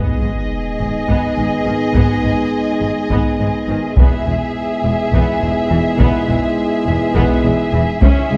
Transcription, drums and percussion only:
1.08 taiko
1.94 taiko
3.10 taiko
3.97 taiko
5.13 taiko
6.00 taiko
7.16 taiko
8.02 taiko

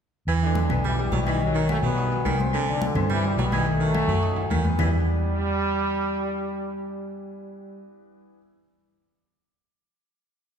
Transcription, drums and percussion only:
0.27 high conga, low agogo, claves
0.41 high conga, low agogo
0.55 high conga, low timbale
0.70 high conga, low conga, low agogo, claves
0.84 high conga, low conga
0.98 high conga, low agogo
1.12 high conga, low timbale, low agogo
1.27 high conga, low agogo, claves
1.41 high conga
1.56 high conga
1.69 high conga, low timbale, low agogo, claves
1.84 high conga
1.98 high conga, low agogo
2.12 high conga, low agogo
2.26 high conga, low timbale, low agogo, claves
2.40 high conga
2.53 high conga, low agogo, claves
2.68 high conga, low agogo
2.82 high conga, low timbale
2.95 high conga, low conga, low agogo, claves
3.10 high conga, low conga
3.24 high conga, low agogo
3.39 high conga, low timbale, low agogo
3.52 high conga, low agogo, claves
3.67 high conga
3.81 high conga
3.94 high conga, low timbale, low agogo, claves
4.09 high conga
4.23 high conga, low agogo
4.36 high conga, high timbale, low agogo
4.50 high conga, low agogo, claves
4.64 high conga, low timbale
4.79 low conga, low timbale, claves

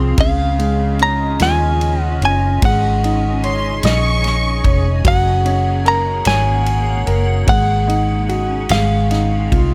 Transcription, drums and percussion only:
0.18 kick, ride
0.59 ride
0.99 ride
1.40 snare, ride
1.81 ride
2.22 ride
2.62 kick, ride
3.04 ride
3.44 ride
3.83 snare, ride
4.24 snare, ride
4.64 kick, ride
5.05 kick, ride
5.46 ride
5.86 ride
6.25 snare, ride
6.66 ride
7.07 ride
7.48 kick, ride
7.90 ride
8.29 ride
8.69 snare, ride
9.11 snare, ride
9.52 kick, ride

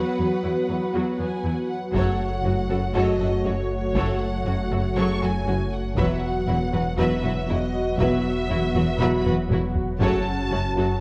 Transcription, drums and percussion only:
1.94 taiko
3.95 taiko
5.97 taiko
7.99 taiko
9.25 taiko low-mid
9.50 taiko mid
9.75 taiko low
10.01 taiko

